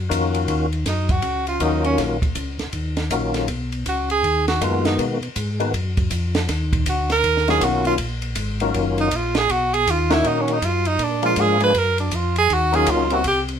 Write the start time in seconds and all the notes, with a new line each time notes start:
0.09 F2 D#3 A#3 C#4 F4 F#4, kick, hi-hat pedal, ride
0.34 ride
0.48 D#2, kick, ride
0.73 ride
0.86 F#2 D#4, kick, snare, hi-hat pedal, ride
1.09 F#4, kick, ride
1.22 C#2, kick, ride
1.47 F4, ride
1.60 D#2 D#3 F#3 A#3 C#4 D#4 F4, kick, hi-hat pedal, ride
1.84 C#4, ride
1.98 A#1, kick, snare, ride
2.22 kick, ride
2.35 C#2, kick, hi-hat pedal, ride
2.59 C#2, snare, ride
2.73 D#2, kick, ride
2.97 snare, ride
3.10 A#1 D#3 F#3 A#3 C#4 F4, kick, hi-hat pedal, ride
3.34 snare, ride
3.48 B1, kick, ride
3.72 ride
3.86 C#2 F#4, kick, hi-hat pedal, ride
4.10 G#4, ride
4.23 D#2, kick, ride
4.48 F#4, snare, ride
4.61 F#2 D#3 G#3 A#3 B3 F4 F#4, kick, hi-hat pedal, ride
4.85 D#4, snare, ride
4.99 B2, kick, ride
5.21 B2, ride
5.36 G#2, kick, hi-hat pedal, ride
5.60 D#3 G#3 A#3 B3 F#4, ride
5.73 F#2, kick, ride
5.97 kick, ride
6.10 F2, kick, hi-hat pedal, ride
6.35 snare, ride
6.49 D#2, kick, snare, ride
6.73 kick, ride
6.86 D2 F#4, kick, hi-hat pedal, ride
7.10 A#4, snare, ride
7.24 D#2, kick, ride
7.37 snare
7.48 D#3 F#3 A#3 C#4 F4 G#4, snare, ride
7.61 B1 F#4, kick, hi-hat pedal, ride
7.85 F4, ride
7.98 A#1, kick, ride
8.22 ride
8.35 G#1, kick, hi-hat pedal, ride
8.60 D#3 F#3 A#3 C#4 F4, ride
8.74 F#1, kick, ride
8.98 D#4, ride
9.11 A#1, kick, hi-hat pedal, ride
9.16 F4
9.35 G#4, snare, ride
9.49 B1 F#4, kick, ride
9.74 G#4, ride
9.87 D#2, kick, hi-hat pedal, ride
9.91 F4
10.10 D#3 A#3 C#4 D#4 E4 F#4, snare, ride
10.24 A#2 D#4, kick, ride
10.41 C#4
10.48 ride
10.53 D#4
10.62 F#2 F4, kick, hi-hat pedal, ride
10.85 D#4, ride
10.99 A#2, kick, ride
11.03 D4
11.22 F3 G#3 A#3 D4 F4, ride
11.36 G#2, kick, hi-hat pedal, ride
11.41 G#4
11.60 F3 G#3 A#3 D4 G#4 B4, ride
11.74 F#2, kick, ride
11.78 A#4
11.98 D4, ride
12.11 F2, kick, hi-hat pedal, ride
12.16 F4
12.36 G#4, ride
12.50 D#2 F#4, kick, ride
12.72 F#3 A#3 C#4 D#4 F4 G#4, ride
12.86 C#2 F4, kick, hi-hat pedal, ride
13.10 G3 A#3 C4 C#4 E4 F#4, ride
13.24 C2 G4, kick, ride
13.48 ride